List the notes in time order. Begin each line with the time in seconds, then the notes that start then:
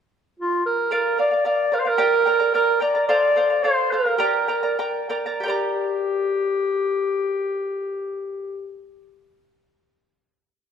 0.40 F4
0.66 A#4
0.91 A#4 D5 F5
1.18 A#4 D5 F5
1.31 D5 F5
1.45 A#4 D5 F5
1.72 A#4 D5 F5
1.80 C5
1.85 A#4 D5 F5
1.98 G4 A#4 D5 G5 A#5
2.26 A#4 D5 G5 A#5
2.40 A#4 D5 A#5
2.54 A#4 D5 G5 A#5
2.80 A#4 D5 G5 A#5
2.95 A#4 D5 A#5
3.07 A4 C5 D5 F5
3.36 A4 C5 F5
3.50 C5 F5
3.63 A4 C5 F5
3.91 A4 B4 C5 F5
4.05 A#4 C5 F5
4.18 G4 A#4 D5 G5 A#5
4.48 A#4 D5 G5 A#5
4.63 A#4 D5 A#5
4.79 A#4 D5 G5 A#5
5.09 A#4 D5 G5 A#5
5.26 A#4 D5 A#5
5.40 G4 G5
5.46 A#4 D5 A#5